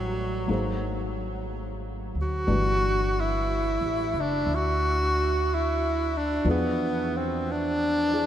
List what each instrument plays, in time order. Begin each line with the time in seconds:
Already playing: upright bass A1, grand piano E3 A3 D4 B4 G5, tenor saxophone F#3
0.46 upright bass G#1, grand piano F#3 A#3 D#4 G#4
0.51 grand piano C5
2.15 upright bass D2
2.22 tenor saxophone F#4
2.47 upright bass G1, grand piano E3 G3 A3 D4 B4
3.21 tenor saxophone E4
3.81 upright bass A1
4.14 upright bass F#1
4.21 tenor saxophone D4
4.46 upright bass D2
4.55 tenor saxophone F#4
5.55 tenor saxophone E4
6.17 tenor saxophone D4
6.44 upright bass E2, grand piano F3 D4 B4
6.49 tenor saxophone B3, grand piano E4 G#4
7.17 tenor saxophone C4
7.52 tenor saxophone D4
8.12 grand piano D4 E4 G#4